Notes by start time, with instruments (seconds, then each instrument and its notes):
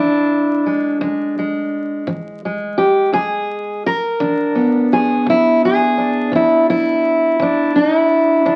Already playing: steel-string acoustic guitar E3 D4 E4
0.66 steel-string acoustic guitar G#3
1.01 steel-string acoustic guitar E2 G#3, kick
1.39 steel-string acoustic guitar G#3
2.07 steel-string acoustic guitar E3, kick
2.45 steel-string acoustic guitar G#3
2.78 steel-string acoustic guitar G4
3.12 steel-string acoustic guitar E2 G#4, kick
3.86 steel-string acoustic guitar A#4
4.20 steel-string acoustic guitar E3 D4, kick
4.55 steel-string acoustic guitar B3
4.93 steel-string acoustic guitar G#4
5.26 steel-string acoustic guitar E2 E4, kick
5.65 steel-string acoustic guitar G#4
5.98 steel-string acoustic guitar D4
6.32 steel-string acoustic guitar E3 E4, kick
6.70 steel-string acoustic guitar E4
7.40 steel-string acoustic guitar E2 D4, kick
7.76 steel-string acoustic guitar D#4
7.96 steel-string acoustic guitar E4
8.45 steel-string acoustic guitar E3 D4, kick